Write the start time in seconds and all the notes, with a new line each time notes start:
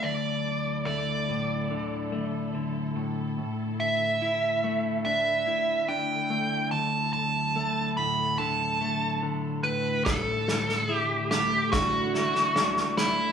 Already playing: A3 D4 E4 A4
0.03 D2 D3 F#3 D5
0.86 A3 D5
1.29 A2
1.71 D3
2.12 A3
2.55 D3
2.96 A2
3.38 A2 D3 A3
3.80 E5
4.22 E4
4.64 A3
5.05 D4 E5
5.47 E4
5.88 D4 G5
6.30 A3
6.71 D2 F#3 A4 A5
7.13 A5
7.56 A3
7.97 A2 B5
8.38 D3 A5
8.81 A3
9.23 D3
9.63 A2 B4
10.05 A2 D3 E3 A3 E4 A4, kick, snare
10.48 snare
10.69 snare
10.89 E4 G4
11.31 A3 G4, snare
11.72 D4 F#4, kick, snare
12.14 E4, snare
12.35 snare
12.55 D4, snare
12.77 snare
12.97 A3 E4, snare